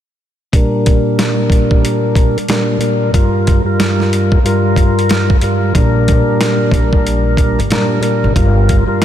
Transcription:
0.52 tonewheel organ A#2 G3 D4 A#4, kick, closed hi-hat
0.86 kick, closed hi-hat
1.19 snare, closed hi-hat
1.50 kick, closed hi-hat
1.71 kick
1.85 closed hi-hat
2.15 kick, closed hi-hat
2.38 closed hi-hat
2.48 tonewheel organ A#2 G3 D4 A#4, snare, closed hi-hat
2.78 tonewheel organ A#2 G3 D4 A#4, closed hi-hat
3.12 tonewheel organ G2 G3 F4 A#4, kick, closed hi-hat
3.47 kick, closed hi-hat
3.64 tonewheel organ G2 G3 F4 A#4
3.80 snare, closed hi-hat
4.00 snare
4.13 closed hi-hat
4.32 kick
4.43 tonewheel organ G2 G3 F4 A#4, closed hi-hat
4.76 kick, closed hi-hat
4.99 closed hi-hat
5.09 snare, closed hi-hat
5.30 kick
5.41 tonewheel organ G2 G3 F4 A#4, closed hi-hat
5.75 upright bass A#1, tonewheel organ A#2 G3 D4 A#4, kick, closed hi-hat
6.08 kick, closed hi-hat
6.41 snare, closed hi-hat
6.71 upright bass A#1, kick, closed hi-hat
6.93 kick
7.07 closed hi-hat
7.37 kick, closed hi-hat
7.59 upright bass G1, closed hi-hat
7.70 tonewheel organ A#2 G3 D4 A#4, snare, closed hi-hat
8.00 tonewheel organ A#2 G3 D4 A#4, closed hi-hat
8.24 upright bass G#1
8.34 upright bass G1, tonewheel organ G2 G3 F4 A#4, kick, closed hi-hat
8.69 kick, closed hi-hat
8.86 tonewheel organ G2 G3 F4 A#4
9.02 snare

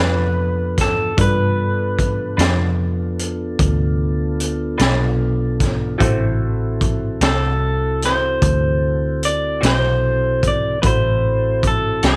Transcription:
Already playing: fingered electric bass F2, clean electric guitar G3 D4 F4 B4, tonewheel organ B3 D4 F4 A4
0.78 clean electric guitar A4, kick, snare, closed hi-hat
1.17 fingered electric bass G2, tonewheel organ B3 D4 F4 A4, upright piano D4 F4 A4 B4, clean electric guitar B4, kick, closed hi-hat
1.99 kick, closed hi-hat
2.37 fingered electric bass F2, clean electric guitar G3 D4 F4 B4, snare, closed hi-hat
3.19 closed hi-hat
3.59 fingered electric bass D2, kick, closed hi-hat
4.40 closed hi-hat
4.78 fingered electric bass B1, clean electric guitar G3 D4 F4 B4, snare, closed hi-hat
5.60 kick, snare, closed hi-hat
5.98 fingered electric bass A1, clean electric guitar D3 A3 C4 F#4, tonewheel organ C4 E4 F#4 A4, upright piano E4 F#4 A4, kick, closed hi-hat
6.02 upright piano C5
6.81 kick, closed hi-hat
7.21 fingered electric bass C2, clean electric guitar D3 A3 C4 F#4, snare, closed hi-hat
7.25 clean electric guitar A4
8.02 clean electric guitar C5, snare, closed hi-hat
8.42 fingered electric bass D2, kick, closed hi-hat
9.23 clean electric guitar D5, closed hi-hat
9.61 fingered electric bass B1, clean electric guitar D3 A3 C4 F#4, snare, closed hi-hat
9.66 clean electric guitar C5
10.43 kick, closed hi-hat
10.48 clean electric guitar D5
10.82 fingered electric bass A1, tonewheel organ C4 E4 F#4 A4, upright piano E4 F#4 A4 B5, clean electric guitar B4, kick, closed hi-hat
10.87 clean electric guitar C5
11.63 kick, closed hi-hat
11.67 clean electric guitar A4
12.03 fingered electric bass C2, clean electric guitar D3 A3 C4 F#4, snare, closed hi-hat
12.07 clean electric guitar A4

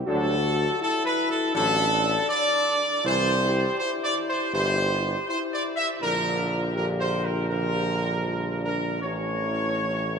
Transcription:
0.06 tuba D2, trombone section D3 F#3, french horn section F#4, trumpet section A4
0.80 french horn section E4, trumpet section A4
1.04 trumpet section B4
1.29 trumpet section A4
1.53 tuba A1, trombone section D3 F#3, french horn section D4, trumpet section A4
2.28 trumpet section D5
3.05 tuba C2, trombone section E3, french horn section E4, trumpet section C5
3.43 french horn section G4
3.78 french horn section E4, trumpet section C5
4.03 trumpet section D5
4.28 trumpet section C5
4.53 tuba G1, trombone section E3, french horn section G4, trumpet section C5
5.27 french horn section E4, trumpet section C5
5.51 trumpet section D5
5.76 trumpet section E5
6.01 tuba A#1, trombone section D3 F3, french horn section D4, trumpet section A#4
6.38 french horn section F4
6.74 trombone section D3 F3, french horn section G4, trumpet section A#4
6.99 trumpet section C5
7.24 trumpet section A#4
7.48 trombone section D3 F3, trumpet section A#4
8.24 trombone section G3, french horn section F4
8.62 french horn section D4, trumpet section A#4
9.01 tuba A1, trombone section E3 A3, french horn section C#4, trumpet section C#5
9.79 french horn section E4

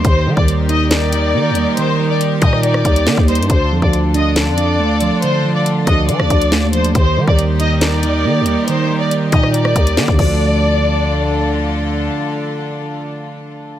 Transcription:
0.05 808-style bass D#2, string section D#3 D#4 G4 A#4, clean electric guitar D#3, violin section C5, kick, closed hi-hat
0.26 808-style bass D#3, clean electric guitar G3
0.37 808-style bass D#2, violin section D5, kick
0.48 closed hi-hat
0.69 clean electric guitar D#4, violin section D#5, closed hi-hat
0.91 clean electric guitar A#4, violin section D5, snare, closed hi-hat
1.12 clean electric guitar D#4, closed hi-hat
1.34 808-style bass D#3, clean electric guitar A#3
1.50 808-style bass D#2
1.55 clean electric guitar G3, closed hi-hat
1.77 clean electric guitar D#3, violin section C5, closed hi-hat
1.99 clean electric guitar G3
2.10 violin section D5
2.21 closed hi-hat
2.42 808-style bass A#2, clean electric guitar D#4, violin section D#5, kick, closed hi-hat
2.53 cross-stick
2.63 clean electric guitar A#4, violin section D5, closed hi-hat
2.74 cross-stick
2.85 808-style bass D#2, clean electric guitar D#4, kick, closed hi-hat
2.96 closed hi-hat
3.07 808-style bass D#3, clean electric guitar A#3, snare
3.17 808-style bass D#2, kick
3.28 clean electric guitar G3, violin section C5, closed hi-hat
3.35 808-style bass G2, closed hi-hat
3.43 closed hi-hat
3.50 808-style bass D2, clean electric guitar D3, string section D3 D4 F4 A4, violin section C5, kick, closed hi-hat
3.71 808-style bass F2, clean electric guitar F3
3.82 808-style bass D2, violin section D5, kick
3.93 closed hi-hat
4.14 clean electric guitar D4, violin section D#5, closed hi-hat
4.36 clean electric guitar D5, violin section D5, snare, closed hi-hat
4.47 808-style bass F2
4.58 clean electric guitar D4, closed hi-hat
4.79 808-style bass D2, clean electric guitar A3
5.01 clean electric guitar F3, closed hi-hat
5.22 clean electric guitar D3, violin section C5, closed hi-hat
5.44 clean electric guitar F3
5.55 violin section D5
5.66 closed hi-hat
5.87 808-style bass D2, clean electric guitar D4, violin section D#5, kick, closed hi-hat
6.09 808-style bass F3, clean electric guitar D5, violin section D5, closed hi-hat
6.20 808-style bass D2, cross-stick
6.30 808-style bass D2, clean electric guitar D4, kick, closed hi-hat
6.42 closed hi-hat
6.52 clean electric guitar A3, snare
6.63 808-style bass D#2
6.73 clean electric guitar F3, violin section C5, closed hi-hat
6.84 closed hi-hat
6.95 808-style bass D#2, string section D#3 D#4 G4 A#4, clean electric guitar D#3, violin section C5, kick, closed hi-hat
7.17 808-style bass D#3, clean electric guitar G3
7.27 808-style bass D#2, violin section D5, kick
7.39 closed hi-hat
7.60 clean electric guitar D#4, violin section D#5, closed hi-hat
7.81 clean electric guitar A#4, violin section D5, snare, closed hi-hat
8.03 clean electric guitar D#4, closed hi-hat
8.25 808-style bass D#3, clean electric guitar A#3
8.41 808-style bass D#2
8.46 clean electric guitar G3, closed hi-hat
8.68 clean electric guitar D#3, violin section C5, closed hi-hat
8.90 clean electric guitar G3
9.00 violin section D5
9.11 closed hi-hat
9.32 808-style bass A#2, clean electric guitar D#4, violin section D#5, kick, closed hi-hat
9.43 cross-stick
9.54 clean electric guitar A#4, violin section D5, closed hi-hat
9.65 cross-stick
9.76 808-style bass D#2, clean electric guitar D#4, kick, closed hi-hat
9.87 closed hi-hat
9.97 808-style bass D#3, clean electric guitar A#3, snare
10.08 808-style bass D#2, kick
10.13 clean electric guitar D3 F3
10.19 808-style bass D2, string section D3 D4 F4 A4, clean electric guitar A3, violin section D5, kick, crash
10.25 clean electric guitar D4

